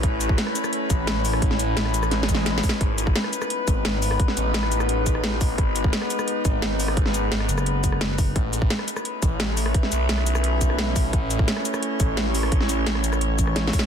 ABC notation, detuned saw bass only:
X:1
M:4/4
L:1/8
Q:1/4=173
K:Alyd
V:1 name="Detuned saw bass" clef=bass
A,,,2 z3 A,,,3 | A,,,4- A,,, z3 | G,,,2 z3 G,,,3 | z A,,,6- A,,, |
G,,,2 z3 G,,,3 | G,,,3 z4 z | A,,,2 z3 A,,,3 | z B,,,6- B,,, |
A,,,2 z3 A,,,3 | A,,,4- A,,, z3 |]